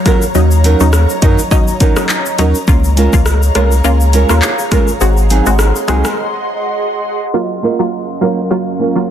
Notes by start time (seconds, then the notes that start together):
Already playing: F#3 C#5 F5 A#5
0.05 F#3 A#3 C#4 F4 A#4, kick, cross-stick, closed hi-hat, shaker
0.22 shaker
0.35 D#2 F#3 C#4 D#4 D#5, shaker
0.51 shaker
0.63 F#3 C#4 D#4 A#4, closed hi-hat, shaker
0.80 D#2 F#3 C#4 D#4, shaker
0.93 cross-stick, high timbale, shaker
1.09 shaker
1.22 F#2 F#3 C#4 D#4 A#4, kick, closed hi-hat, shaker
1.38 shaker
1.51 F#3 C#4 D#4, kick, shaker
1.68 shaker
1.80 F#3 C#4 D#4 A#4, kick, closed hi-hat, shaker
1.96 F#3 C#4 D#4, cross-stick, shaker
2.09 clap, shaker
2.26 shaker
2.38 D#2 F#3 C#4 D#4 A#4, closed hi-hat, shaker
2.55 shaker
2.68 C#2 A#3 C#4 F4 G#4 C#5 F5 A#5, kick, shaker
2.84 shaker
2.97 G#3 C#4 F4 A#4, closed hi-hat, shaker
3.13 C#2 A#3 C#4 F4, kick, shaker
3.26 cross-stick, shaker
3.42 shaker
3.55 C2 G#3 A#3 C#4 F4 A#4, cross-stick, closed hi-hat, shaker
3.71 shaker
3.84 C#2 A#3 C#4 F4, shaker
4.00 shaker
4.13 G#3 C#4 F4 A#4, closed hi-hat, shaker
4.29 D#2 A#3 C#4 F4, cross-stick, shaker
4.42 clap, shaker
4.59 shaker
4.71 G#3 A#3 C#4 F4 A#4, kick, cross-stick, closed hi-hat, shaker
4.88 shaker
5.01 G#1 G#3 C4 F#4 D#5 F#5 C6, shaker
5.17 shaker
5.29 F#3 C4 D#4 G#4, closed hi-hat, shaker
5.46 G#1 G#3 C4 F#4, shaker
5.59 cross-stick, high timbale, shaker
5.75 shaker
5.87 C2 F#3 G#3 C4 D#4 F#4 G#4, cross-stick, closed hi-hat, shaker
6.04 cross-stick, shaker
7.34 F#3 A#3 C#4 F4 A#4 F5
7.62 A#3 C#4 F4 A#4
7.79 F#3 A#3 F4
8.21 F#3 A#3 C#4 F4 A#4
8.50 F#3 A#3 F4
8.79 A#3 C#4 F4 A#4
8.96 F#3 A#3 F4